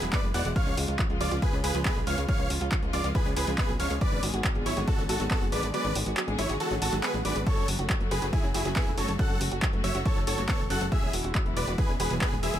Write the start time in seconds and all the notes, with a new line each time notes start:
0.02 E1 B2 E3 F#3 G#3 E4, closed hi-hat
0.13 B3 B4 D5 D6, kick, clap, closed hi-hat
0.24 F#1 G#3, closed hi-hat
0.34 E2 B2 E3 F#3 G#3 E4 D5 F#5 F#6, open hi-hat
0.45 E1 G#3, closed hi-hat
0.56 C#3 F3 G#3 F4 C#5 F5 F6, kick, closed hi-hat
0.67 C#2 C#4, closed hi-hat
0.77 C#2 C#3 F3 G#3 F4, open hi-hat
0.88 C#2 F4, closed hi-hat
0.99 F3, kick, clap, closed hi-hat
1.10 C#2 C#3 F3 G#3 F4, closed hi-hat
1.21 C#2 F3 F4 D5 D6, open hi-hat
1.31 C#2 C#3 F3 G#3 F4, closed hi-hat
1.42 C#3 F3 G#3 F4 G#4 B4 B5, kick, closed hi-hat
1.53 C#2 C#4, closed hi-hat
1.64 C#2 F4 G#4 B4 B5, open hi-hat
1.75 C#2 C#3 F3 G#3 F4, closed hi-hat
1.85 B3 G#4 B4 B5, kick, clap, closed hi-hat
1.96 B1 G#3, closed hi-hat
2.07 C#2 C#3 F3 G#3 F4 C#5 F5 F6, open hi-hat
2.18 C#2 G#3, closed hi-hat
2.28 C#3 F3 G#3 F4 C#5 F5 F6, kick, closed hi-hat
2.39 C#2 C#4, closed hi-hat
2.50 C#2 C#3 F3 G#3 F4, open hi-hat
2.61 C#2 F4, closed hi-hat
2.72 F3, kick, clap, closed hi-hat
2.83 C#2 C#3 F3 G#3 F4, closed hi-hat
2.93 C#2 F3 F4 D5 D6, open hi-hat
3.04 C#2 C#3 F3 G#3 F4, closed hi-hat
3.15 C#3 F3 G#3 F4 G#4 B4 B5, kick, closed hi-hat
3.26 C#2 C#4, closed hi-hat
3.36 C#2 F4 G#4 B4 B5, open hi-hat
3.47 C#2 C#3 F3 G#3 F4, closed hi-hat
3.58 B3 G#4 B4 B5, kick, clap, closed hi-hat
3.69 B1 G#3, closed hi-hat
3.80 C#2 C#3 F3 G#3 F4 C#5 F5 F6, open hi-hat
3.90 C#2 G#3, closed hi-hat
4.01 D3 F#3 G#3 B3 G#4 B4 D5 D6, kick, closed hi-hat
4.12 G#1 C#4, closed hi-hat
4.23 G#1 D3 G#3 B3 F#4 G#4, open hi-hat
4.34 G#1 F#4, closed hi-hat
4.44 F#3, kick, clap, closed hi-hat
4.55 G#1 D3 G#3 B3 G#4, closed hi-hat
4.66 G#1 F#3 E4 C#5 C#6, open hi-hat
4.77 G#1 D3 G#3 B3 F#4 G#4, closed hi-hat
4.87 D3 E3 G#3 B3 F#4 G#4 A4 A5, kick, closed hi-hat
4.98 G#1 C#4, closed hi-hat
5.09 G#1 F#4 A4 A5, open hi-hat
5.20 G#1 D3 F#3 G#3 B3 G#4, closed hi-hat
5.31 B3 F#4 A4 A5, kick, clap, closed hi-hat
5.42 F#1 G#3, closed hi-hat
5.52 G#1 D3 F#3 G#3 B3 G#4 B4 D5 D6, open hi-hat
5.63 G#1 G#3, closed hi-hat
5.74 D3 F#3 G#3 B3 G#4 B4 D5 D6, closed hi-hat
5.85 G#1 C#4, closed hi-hat
5.95 G#1 D3 G#3 B3 F#4 G#4, open hi-hat
6.06 G#1 F#4, closed hi-hat
6.17 F#3, clap, closed hi-hat
6.28 G#1 D3 G#3 B3 G#4, closed hi-hat
6.39 G#1 F#3 E4 C#5 C#6, open hi-hat
6.49 G#1 D3 G#3 B3 F#4 G#4, closed hi-hat
6.60 D3 E3 G#3 B3 F#4 G#4 A4 A5, closed hi-hat, swell
6.71 G#1 C#4, closed hi-hat
6.82 G#1 F#4 A4 A5, open hi-hat
6.93 G#1 D3 F#3 G#3 B3 G#4, closed hi-hat
7.03 B3 G#4 B4 B5, clap, closed hi-hat
7.14 A1 G#3, closed hi-hat
7.25 G#1 D3 F#3 G#3 B3 G#4 B4 D5 D6, open hi-hat
7.36 G#1 G#3, closed hi-hat
7.46 C#3 F#3 A3 F#4 A4 C#5 C#6, kick, closed hi-hat
7.57 F#1 C#4, closed hi-hat
7.68 F#1 C#3 F#3 A3 F#4, open hi-hat
7.79 F#1 F#4, closed hi-hat
7.90 F#3, kick, clap, closed hi-hat
8.00 F#1 C#3 F#3 A3 F#4, closed hi-hat
8.11 F#1 F#3 G#4 B4 B5, open hi-hat
8.22 F#1 C#3 F#3 A3 F#4, closed hi-hat
8.33 C#3 E3 F#3 A3 E4 F#4 G#4 G#5, kick, closed hi-hat
8.44 F#1 C#4, closed hi-hat
8.54 F#1 E4 F#4 G#4 G#5, open hi-hat
8.65 F#1 C#3 F#3 A3 F#4, closed hi-hat
8.76 B3 E4 G#4 G#5, kick, clap, closed hi-hat
8.87 E1 A3, closed hi-hat
8.98 F#1 C#3 F#3 A3 F#4 A4 C#5 C#6, open hi-hat
9.08 F#1 G#3, closed hi-hat
9.19 C#3 F#3 A3 F#4 A4 F#5 F#6, kick, closed hi-hat
9.30 F#1 C#4, closed hi-hat
9.41 F#1 C#3 F#3 A3 F#4, open hi-hat
9.52 F#1 F#4, closed hi-hat
9.62 F#3, kick, clap, closed hi-hat
9.73 F#1 C#3 F#3 A3 F#4, closed hi-hat
9.84 F#1 F#3 C#5 E5 E6, open hi-hat
9.95 F#1 C#3 F#3 A3 F#4, closed hi-hat
10.06 C#3 E3 F#3 A3 F#4 A4 C#5 C#6, kick, closed hi-hat
10.16 F#1 C#4, closed hi-hat
10.27 F#1 F#4 A4 C#5 C#6, open hi-hat
10.38 F#1 C#3 F#3 A3 F#4, closed hi-hat
10.49 B3 A4 C#5 C#6, kick, clap, closed hi-hat
10.60 E1 A3, closed hi-hat
10.70 F#1 C#3 F#3 A3 F#4 A4 F#5 F#6, open hi-hat
10.81 F#1 G#3, closed hi-hat
10.92 B2 E3 F#3 G#3 E4 G#4 E5 E6, kick, closed hi-hat
11.03 E1 C#4, closed hi-hat
11.13 E1 B2 E3 G#3 E4 F#4, open hi-hat
11.24 E1 F#4, closed hi-hat
11.35 F#3, kick, clap, closed hi-hat
11.46 E1 B2 E3 G#3 E4, closed hi-hat
11.57 E1 F#3 B4 D5 D6, open hi-hat
11.67 E1 B2 E3 G#3 E4 F#4, closed hi-hat
11.78 B2 E3 G#3 E4 G#4 B4 B5, kick, closed hi-hat
11.89 E1 C#4, closed hi-hat
12.00 E1 F#4 G#4 B4 B5, open hi-hat
12.11 E1 B2 E3 F#3 G#3 E4, closed hi-hat
12.21 B3 G#4 B4 B5, kick, clap, closed hi-hat
12.32 D1 G#3, closed hi-hat
12.43 E1 B2 E3 F#3 G#3 E4 G#4 E5 E6, open hi-hat
12.54 E1 G#3, closed hi-hat